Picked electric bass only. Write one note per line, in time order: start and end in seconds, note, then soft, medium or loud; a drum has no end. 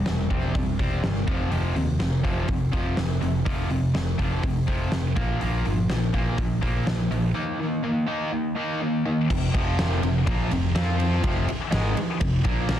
0.07 0.27 E1 medium
0.31 0.51 E1 medium
0.55 0.75 E1 medium
0.79 0.99 E1 medium
1.04 1.24 G1 medium
1.28 1.48 F1 medium
1.51 1.72 F1 medium
1.76 1.96 D#2 medium
2.00 2.20 F1 medium
2.25 2.45 F1 medium
2.49 2.69 F1 medium
2.73 2.94 F1 medium
2.97 3.18 F1 medium
3.22 3.42 F1 medium
3.46 3.66 F1 medium
3.69 3.90 F1 medium
3.94 4.14 F1 medium
4.19 4.39 F1 medium
4.44 4.64 F1 medium
4.68 4.88 F1 medium
4.92 5.12 F1 medium
5.17 5.37 A#1 medium
5.43 5.62 A#1 medium
5.66 5.86 G1 medium
5.90 6.10 A#1 medium
6.14 6.34 A#1 medium
6.38 6.58 A#1 medium
6.63 6.83 A#1 medium
6.86 7.07 A#1 medium
7.10 7.31 A#1 medium
9.31 9.53 F1 medium
9.55 10.00 F1 medium
10.03 10.25 F1 medium
10.27 10.50 A#1 medium
10.51 10.73 F1 medium
10.75 11.20 F2 medium
11.24 11.46 F1 medium
11.49 muted picked electric bass stroke soft
11.72 11.95 G#1 loud
11.97 muted picked electric bass stroke soft
12.21 12.43 F1 medium
12.45 12.80 A#1 loud